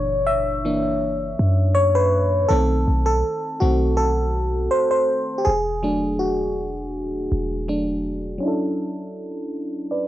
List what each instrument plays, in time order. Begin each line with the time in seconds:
Already playing: 808-style bass F#1, fm electric piano A#2 E3 D4 C#5
0.27 fm electric piano E5
0.65 fm electric piano E3 A#3 D4
1.39 808-style bass F#2
1.75 fm electric piano C#5
1.95 fm electric piano B4
2.49 808-style bass B1, fm electric piano D#3 A3 C4 A4
2.88 808-style bass B1
3.06 fm electric piano A4
3.60 808-style bass B1, fm electric piano D#3 A3 C4 F#4
3.97 fm electric piano A4
4.71 fm electric piano C5
4.91 fm electric piano C5
5.38 fm electric piano G4
5.45 808-style bass E1, fm electric piano G#4
5.83 fm electric piano F#3 A3 D4
6.19 fm electric piano F#4
7.32 808-style bass E1
7.68 fm electric piano F#3 A3 D4
8.38 fm electric piano F#3 C#4
8.43 fm electric piano D4 E4
8.48 fm electric piano A4
9.91 fm electric piano B4 D5